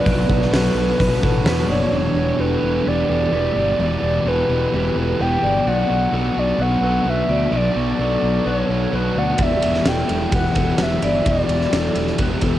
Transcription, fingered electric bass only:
0, 0, Header, 1, 2, 480
1, 0, Start_track
1, 0, Tempo, 466200
1, 69, Time_signature, 4, 2, 24, 8
1, 12962, End_track
2, 0, Start_track
2, 0, Title_t, "Fingered electric bass"
2, 0, Program_c, 0, 33
2, 66, Note_on_c, 0, 35, 97
2, 243, Note_off_c, 0, 35, 0
2, 301, Note_on_c, 0, 35, 89
2, 480, Note_off_c, 0, 35, 0
2, 519, Note_on_c, 0, 35, 84
2, 707, Note_off_c, 0, 35, 0
2, 757, Note_on_c, 0, 35, 85
2, 945, Note_off_c, 0, 35, 0
2, 1034, Note_on_c, 0, 35, 87
2, 1209, Note_off_c, 0, 35, 0
2, 1269, Note_on_c, 0, 33, 83
2, 1446, Note_off_c, 0, 33, 0
2, 1494, Note_on_c, 0, 40, 91
2, 1676, Note_off_c, 0, 40, 0
2, 1722, Note_on_c, 0, 30, 86
2, 1909, Note_off_c, 0, 30, 0
2, 1965, Note_on_c, 0, 28, 95
2, 2146, Note_off_c, 0, 28, 0
2, 2201, Note_on_c, 0, 28, 88
2, 2383, Note_off_c, 0, 28, 0
2, 2457, Note_on_c, 0, 28, 83
2, 2633, Note_off_c, 0, 28, 0
2, 2699, Note_on_c, 0, 28, 76
2, 2874, Note_off_c, 0, 28, 0
2, 2950, Note_on_c, 0, 28, 80
2, 3122, Note_off_c, 0, 28, 0
2, 3186, Note_on_c, 0, 28, 77
2, 3359, Note_off_c, 0, 28, 0
2, 3422, Note_on_c, 0, 28, 84
2, 3596, Note_off_c, 0, 28, 0
2, 3663, Note_on_c, 0, 31, 89
2, 3837, Note_off_c, 0, 31, 0
2, 3904, Note_on_c, 0, 28, 99
2, 4077, Note_off_c, 0, 28, 0
2, 4138, Note_on_c, 0, 28, 84
2, 4314, Note_off_c, 0, 28, 0
2, 4370, Note_on_c, 0, 28, 85
2, 4548, Note_off_c, 0, 28, 0
2, 4621, Note_on_c, 0, 28, 84
2, 4795, Note_off_c, 0, 28, 0
2, 4873, Note_on_c, 0, 28, 95
2, 5043, Note_off_c, 0, 28, 0
2, 5102, Note_on_c, 0, 28, 82
2, 5276, Note_off_c, 0, 28, 0
2, 5355, Note_on_c, 0, 28, 90
2, 5524, Note_off_c, 0, 28, 0
2, 5585, Note_on_c, 0, 31, 90
2, 5757, Note_off_c, 0, 31, 0
2, 5832, Note_on_c, 0, 35, 102
2, 6002, Note_off_c, 0, 35, 0
2, 6072, Note_on_c, 0, 35, 85
2, 6242, Note_off_c, 0, 35, 0
2, 6303, Note_on_c, 0, 35, 91
2, 6476, Note_off_c, 0, 35, 0
2, 6551, Note_on_c, 0, 35, 85
2, 6721, Note_off_c, 0, 35, 0
2, 6776, Note_on_c, 0, 35, 91
2, 6951, Note_off_c, 0, 35, 0
2, 7011, Note_on_c, 0, 35, 77
2, 7187, Note_off_c, 0, 35, 0
2, 7254, Note_on_c, 0, 35, 89
2, 7429, Note_off_c, 0, 35, 0
2, 7498, Note_on_c, 0, 38, 90
2, 7672, Note_off_c, 0, 38, 0
2, 7734, Note_on_c, 0, 35, 88
2, 7909, Note_off_c, 0, 35, 0
2, 7983, Note_on_c, 0, 35, 82
2, 8155, Note_off_c, 0, 35, 0
2, 8224, Note_on_c, 0, 35, 77
2, 8396, Note_off_c, 0, 35, 0
2, 8468, Note_on_c, 0, 35, 80
2, 8638, Note_off_c, 0, 35, 0
2, 8708, Note_on_c, 0, 35, 89
2, 8878, Note_off_c, 0, 35, 0
2, 8945, Note_on_c, 0, 35, 73
2, 9116, Note_off_c, 0, 35, 0
2, 9187, Note_on_c, 0, 35, 84
2, 9357, Note_off_c, 0, 35, 0
2, 9421, Note_on_c, 0, 38, 77
2, 9594, Note_off_c, 0, 38, 0
2, 9669, Note_on_c, 0, 28, 89
2, 9839, Note_off_c, 0, 28, 0
2, 9920, Note_on_c, 0, 28, 78
2, 10086, Note_off_c, 0, 28, 0
2, 10154, Note_on_c, 0, 28, 89
2, 10322, Note_off_c, 0, 28, 0
2, 10391, Note_on_c, 0, 28, 88
2, 10560, Note_off_c, 0, 28, 0
2, 10629, Note_on_c, 0, 28, 90
2, 10799, Note_off_c, 0, 28, 0
2, 10872, Note_on_c, 0, 28, 77
2, 11041, Note_off_c, 0, 28, 0
2, 11122, Note_on_c, 0, 28, 79
2, 11288, Note_off_c, 0, 28, 0
2, 11351, Note_on_c, 0, 31, 91
2, 11521, Note_off_c, 0, 31, 0
2, 11594, Note_on_c, 0, 28, 85
2, 11763, Note_off_c, 0, 28, 0
2, 11823, Note_on_c, 0, 28, 86
2, 11996, Note_off_c, 0, 28, 0
2, 12066, Note_on_c, 0, 28, 88
2, 12238, Note_off_c, 0, 28, 0
2, 12307, Note_on_c, 0, 28, 77
2, 12479, Note_off_c, 0, 28, 0
2, 12550, Note_on_c, 0, 28, 89
2, 12721, Note_off_c, 0, 28, 0
2, 12789, Note_on_c, 0, 28, 87
2, 12960, Note_off_c, 0, 28, 0
2, 12962, End_track
0, 0, End_of_file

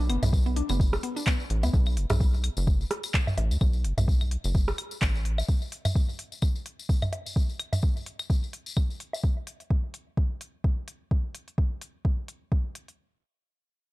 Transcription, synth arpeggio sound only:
0, 0, Header, 1, 2, 480
1, 0, Start_track
1, 0, Key_signature, 2, "minor"
1, 0, Tempo, 468750
1, 1777, Time_signature, 4, 2, 24, 8
1, 14262, End_track
2, 0, Start_track
2, 0, Title_t, "Synth arpeggio sound"
2, 0, Program_c, 0, 84
2, 97, Note_on_c, 0, 59, 76
2, 160, Note_off_c, 0, 59, 0
2, 472, Note_on_c, 0, 59, 74
2, 521, Note_off_c, 0, 59, 0
2, 577, Note_on_c, 0, 62, 74
2, 640, Note_off_c, 0, 62, 0
2, 712, Note_on_c, 0, 59, 75
2, 761, Note_off_c, 0, 59, 0
2, 1057, Note_on_c, 0, 59, 77
2, 1120, Note_off_c, 0, 59, 0
2, 1192, Note_on_c, 0, 62, 73
2, 1241, Note_off_c, 0, 62, 0
2, 1297, Note_on_c, 0, 59, 80
2, 1360, Note_off_c, 0, 59, 0
2, 1672, Note_on_c, 0, 59, 74
2, 1721, Note_off_c, 0, 59, 0
2, 14262, End_track
0, 0, End_of_file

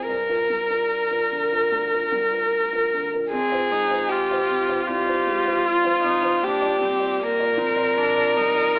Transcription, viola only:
0, 0, Header, 1, 2, 480
1, 0, Start_track
1, 0, Tempo, 807537
1, 60, Time_signature, 4, 2, 24, 8
1, 1979, Tempo, 773196
1, 5370, End_track
2, 0, Start_track
2, 0, Title_t, "Viola"
2, 0, Program_c, 0, 41
2, 1973, Note_on_c, 0, 60, 55
2, 2221, Note_on_c, 0, 63, 58
2, 2230, Note_off_c, 0, 60, 0
2, 2467, Note_on_c, 0, 65, 50
2, 2476, Note_off_c, 0, 63, 0
2, 2934, Note_on_c, 0, 67, 56
2, 2943, Note_off_c, 0, 65, 0
2, 3424, Note_on_c, 0, 65, 56
2, 3433, Note_off_c, 0, 67, 0
2, 3655, Note_off_c, 0, 65, 0
2, 3659, Note_on_c, 0, 63, 55
2, 3895, Note_off_c, 0, 63, 0
2, 3913, Note_on_c, 0, 62, 56
2, 4142, Note_off_c, 0, 62, 0
2, 4145, Note_on_c, 0, 60, 54
2, 4381, Note_on_c, 0, 58, 58
2, 4391, Note_off_c, 0, 60, 0
2, 4619, Note_on_c, 0, 60, 55
2, 4629, Note_off_c, 0, 58, 0
2, 4867, Note_on_c, 0, 62, 58
2, 4877, Note_off_c, 0, 60, 0
2, 5109, Note_on_c, 0, 63, 58
2, 5118, Note_off_c, 0, 62, 0
2, 5347, Note_on_c, 0, 65, 57
2, 5357, Note_off_c, 0, 63, 0
2, 5370, Note_off_c, 0, 65, 0
2, 5370, End_track
0, 0, End_of_file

